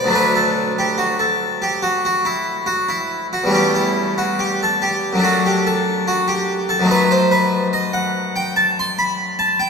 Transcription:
Already playing: D5
0.04 D2 F#3
0.08 A3 D4
0.15 B4
0.36 A4
0.78 G4
0.98 F#4
1.19 A4
1.62 G4
1.83 F#4
2.05 F#4
2.25 E4
2.66 F#4
2.89 E4
3.33 F#4
3.44 E2 G3
3.48 A3 C#4
3.54 G4
3.75 E4
4.18 F#4
4.39 G4
4.63 A4
4.82 G4
5.13 F#2 F#3
5.17 A3 D4
5.24 F#4
5.46 G4
5.67 A4
6.08 F#4
6.28 G4
6.69 A4
6.80 F#2 F#3
6.84 A3 D#4
6.91 B4
7.11 C5
7.31 B4
7.73 D#5
7.93 F#5
8.36 G5
8.56 A5
8.79 C6
8.99 B5
9.39 A5
9.60 G5

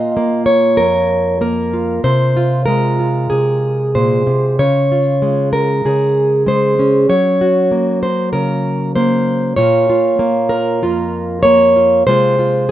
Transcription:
Already playing: A#2 F4 D#5
0.17 A#3
0.46 C#5
0.77 F2 A#4
1.41 A#3 A#4
1.73 F4
2.04 C3 C5
2.37 F4
2.66 G#3 A#4
2.99 F4
3.30 C3 G#4
3.95 A#2 C5
4.27 C3
4.59 C#3 C#5
4.92 F4
5.22 G#3
5.53 A#4
5.85 C#3 G#4
6.46 G#3 C5
6.79 C#4
7.09 F#3 C#5
7.41 F#4
7.71 A#3
8.03 C5
8.33 C#3 A#4
8.96 A#3 C5
9.56 A#2 A#3 F4 C#5
9.90 F4
10.19 A#3
10.49 A#4
10.82 F2 F4
11.43 A#3 C#5
11.76 F4
12.07 C3 G#3 F4 C5
12.39 F4

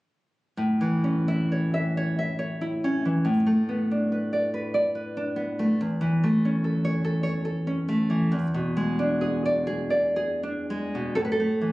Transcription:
0.57 A2
0.81 E3
1.04 C#4
1.28 E4
1.52 C#5
1.74 E5
1.97 C#5
2.19 E5
2.39 C#5
2.61 E4
2.84 C#4
3.05 E3
3.25 A2
3.47 A3
3.69 B3
3.91 D4
4.12 B4
4.33 D5
4.54 B4
4.74 D5
4.95 B4
5.17 D4
5.36 B3
5.59 A3
5.81 E2
6.01 E3
6.24 A3
6.45 C#4
6.64 A4
6.85 C#5
7.04 A4
7.23 C#5
7.45 A4
7.67 C#4
7.89 A3
8.10 E3
8.32 E2
8.54 B2
8.77 G#3
8.99 D4
9.21 G#4
9.46 D5
9.67 G#4
9.90 D5
10.16 G#4
10.43 D4
10.70 G#3
10.95 B2
11.15 A2 A4
11.25 B4
11.32 A4
11.40 A3
11.62 E3

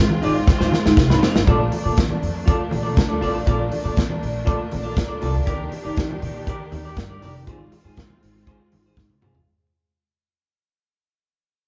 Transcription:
Already playing: G#3 C4 F4
0.09 muted clean electric guitar stroke, high conga
0.22 G#1 D#4 F4 D5, open hi-hat
0.34 muted clean electric guitar stroke
0.47 muted clean electric guitar stroke, kick, snare, muted conga
0.58 G#2 D#4 F4 C5, snare
0.72 muted clean electric guitar stroke, snare, muted conga, high conga
0.83 G#2, muted clean electric guitar stroke, snare
0.97 C2, muted clean electric guitar stroke, kick, snare, muted conga
1.10 G#1 D#4 F4 C5, snare
1.22 D#4 F4 C5, snare, low conga
1.35 G1, muted clean electric guitar stroke, snare
1.46 A#1 A3 A#3 D4 F4 A4, kick, closed hi-hat, muted conga, low conga
1.50 D5
1.60 muted clean electric guitar stroke
1.71 muted clean electric guitar stroke, open hi-hat, muted conga, high conga
1.84 A#2 F4 A4 D5
1.96 muted clean electric guitar stroke, kick, snare, closed hi-hat, muted conga, high conga
2.09 muted clean electric guitar stroke, high conga, low conga
2.22 F2, open hi-hat, muted conga
2.34 muted clean electric guitar stroke
2.45 F4 A4 D5, kick, closed hi-hat, muted conga
2.58 muted clean electric guitar stroke
2.71 A#1, muted clean electric guitar stroke, open hi-hat, muted conga, high conga
2.83 F4 A4 D5
2.96 D2, muted clean electric guitar stroke, kick, snare, closed hi-hat, muted conga
3.09 F4 A4 D5
3.21 A1 F4 A4 D5, open hi-hat, muted conga, low conga
3.35 muted clean electric guitar stroke
3.46 A#1 F4 A4 D5, kick, closed hi-hat, muted conga, low conga
3.59 muted clean electric guitar stroke
3.72 muted clean electric guitar stroke, open hi-hat, muted conga, high conga
3.84 A#2 F4 A4 D5
3.96 muted clean electric guitar stroke, kick, snare, closed hi-hat, muted conga, high conga
4.09 muted clean electric guitar stroke, high conga, low conga
4.22 A#1, open hi-hat, muted conga
4.33 muted clean electric guitar stroke
4.45 F4 A4 D5, kick, closed hi-hat
4.58 muted clean electric guitar stroke
4.71 A#1, muted clean electric guitar stroke, open hi-hat, high conga
4.83 F4 A4 D5
4.96 A#2, muted clean electric guitar stroke, kick, snare, closed hi-hat, muted conga
5.08 F4 A4 D5
5.21 C2 F4 A4 D5, open hi-hat, low conga
5.34 D2, muted clean electric guitar stroke
5.46 D#2 D#3 G4 A#4 D5, kick, closed hi-hat, low conga
5.59 muted clean electric guitar stroke
5.71 muted clean electric guitar stroke, open hi-hat, muted conga, high conga
5.84 D#3 G4 A#4 D5
5.96 muted clean electric guitar stroke, kick, snare, closed hi-hat, high conga
6.09 muted clean electric guitar stroke, high conga, low conga
6.22 A#2, open hi-hat, muted conga
6.34 muted clean electric guitar stroke
6.47 G4 A#4 D5, kick, closed hi-hat
6.61 muted clean electric guitar stroke
6.72 D#2, muted clean electric guitar stroke, open hi-hat, muted conga, high conga
6.85 G4 A#4 D5
6.97 G2, muted clean electric guitar stroke, kick, snare, closed hi-hat
7.10 G4 A#4 D5
7.22 F1 G4 A#4 D5, open hi-hat, low conga
7.35 muted clean electric guitar stroke
7.46 G#1 G#3 C4 F4 G#4 C5, kick, closed hi-hat, muted conga, low conga
7.59 muted clean electric guitar stroke
7.72 muted clean electric guitar stroke, open hi-hat, muted conga, high conga
7.84 G#2 F4 G#4 C5
7.97 muted clean electric guitar stroke, kick, snare, closed hi-hat, muted conga, high conga
8.08 muted clean electric guitar stroke, high conga, low conga
8.23 G#1, open hi-hat, muted conga
8.33 muted clean electric guitar stroke
8.46 F4 G#4 C5, kick, closed hi-hat
8.59 muted clean electric guitar stroke
8.72 G#1, muted clean electric guitar stroke, open hi-hat, high conga
8.86 F4 G#4 C5
8.97 G#2, muted clean electric guitar stroke, kick, snare, muted conga
9.10 muted clean electric guitar stroke, high tom
9.21 C2 F4 G#4 C5, mid tom, muted conga, low conga
9.35 G1, muted clean electric guitar stroke, floor tom

